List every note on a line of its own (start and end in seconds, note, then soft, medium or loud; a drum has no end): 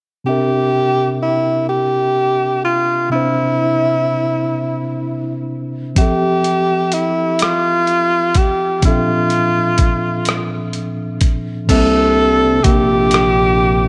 0.24 3.07 C3 soft
0.24 3.07 C4 soft
0.24 3.08 D4 soft
0.24 1.17 G4 medium
0.29 3.10 A#4 medium
0.29 3.09 E5 soft
1.23 1.66 E4 medium
1.69 2.60 G4 medium
2.65 3.08 F4 medium
3.10 5.92 C3 soft
3.10 5.93 C4 soft
3.10 5.94 D4 soft
3.10 5.46 E4 medium
3.14 5.94 E4 soft
3.14 5.95 C5 medium
5.95 8.78 F3 medium
5.95 8.79 C4 soft
5.95 6.95 G4 medium
5.95 8.79 E5 soft
5.95 kick medium
5.95 closed hi-hat medium
6.00 8.80 G4 soft
6.00 8.81 A4 medium
6.44 closed hi-hat soft
6.92 7.44 E4 medium
6.92 closed hi-hat soft
7.39 8.39 F4 medium
7.39 cross-stick medium
7.39 closed hi-hat medium
7.87 closed hi-hat soft
8.35 8.84 G4 medium
8.35 kick medium
8.35 closed hi-hat medium
8.81 11.64 A#2 medium
8.81 11.64 F3 soft
8.81 11.65 C4 soft
8.81 11.65 D4 soft
8.81 kick medium
8.81 closed hi-hat medium
8.85 10.70 F4 medium
8.85 11.67 A4 medium
8.85 11.66 E5 soft
9.30 closed hi-hat soft
9.78 kick medium
9.78 closed hi-hat medium
10.25 cross-stick medium
10.25 closed hi-hat medium
10.73 closed hi-hat soft
11.21 kick medium
11.21 closed hi-hat medium
11.67 12.60 C2 loud
11.67 13.88 C3 medium
11.67 13.88 C4 soft
11.67 13.88 D4 medium
11.67 12.65 A4 loud
11.67 kick medium
11.67 closed hi-hat medium
11.67 crash medium
11.71 13.88 A#3 medium
11.71 13.88 E5 soft
12.64 13.88 A#1 medium
12.64 13.88 G4 medium
12.64 kick medium
12.64 closed hi-hat medium
13.11 cross-stick medium
13.11 closed hi-hat medium